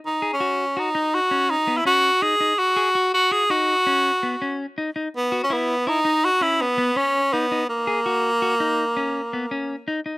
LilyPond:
<<
  \new Staff \with { instrumentName = "Clean electric guitar" } { \time 7/4 \key gis \minor \tempo 4 = 165 r8 gis'8 fis'4 fis'8 dis'4 cis'4 b8 cis'4 dis'8 dis'8 | r8 gis'8 fis'4 fis'8 dis'4 cis'4 b8 cis'4 dis'8 dis'8 | r8 fis'8 e'4 e'8 dis'4 cis'4 b8 cis'4 dis'8 dis'8 | r8 gis'8 fis'4 fis'8 dis'4 cis'4 b8 cis'4 dis'8 dis'8 | }
  \new Staff \with { instrumentName = "Tenor saxophone" } { \time 7/4 \key gis \minor dis'8. cis'4~ cis'16 dis'4 fis'4 dis'8. e'16 fis'4 gis'4 | fis'4. fis'8 gis'8 fis'2. r4. | b8. cis'16 b4 dis'4 fis'8 e'8 b4 cis'4 b4 | ais1. r4 | }
>>